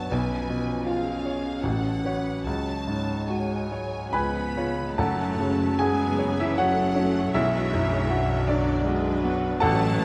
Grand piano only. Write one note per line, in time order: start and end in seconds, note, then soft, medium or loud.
0.00 0.14 F#2 soft
0.00 0.10 B3 soft
0.00 0.14 F#4 soft
0.00 0.14 D5 soft
0.11 1.61 B1 medium
0.50 1.10 B2 soft
0.87 1.48 F4 soft
1.25 1.64 C#5 soft
1.63 2.43 A1 medium
2.06 2.43 F#4 soft
2.06 2.43 C#5 soft
2.47 4.09 C#2 soft
2.87 3.54 G#2 soft
3.30 3.96 F#4 soft
3.72 4.13 C#5 soft
4.13 4.96 C#2 soft
4.13 4.94 B4 medium
4.13 4.94 G#5 soft
4.13 4.93 B5 medium
4.57 4.94 F4 soft
4.57 4.94 C#5 soft
4.98 7.31 F#2 medium
4.98 5.75 A4 soft
4.98 5.76 F#5 soft
4.98 5.75 A5 medium
5.39 6.03 C#3 soft
5.79 6.41 F#4 soft
5.79 6.34 G#4 medium
5.79 6.34 G#5 medium
6.19 6.58 C#5 soft
6.40 6.57 E4 medium
6.40 6.57 E5 medium
6.58 7.19 F#4 medium
6.58 7.31 C#5 medium
6.58 7.31 F#5 medium
6.96 7.34 C#4 medium
7.34 9.56 B1 medium
7.34 8.44 E4 medium
7.34 8.43 E5 medium
7.73 8.33 F#2 medium
8.10 8.70 F#4 medium
8.48 8.84 D4 medium
8.48 9.08 D5 medium
8.87 9.46 F#4 medium
9.24 9.61 B3 medium
9.60 10.05 A1 medium
9.60 10.05 A4 medium
9.60 10.05 F#5 medium
9.60 10.05 A5 medium
9.98 10.05 A2 medium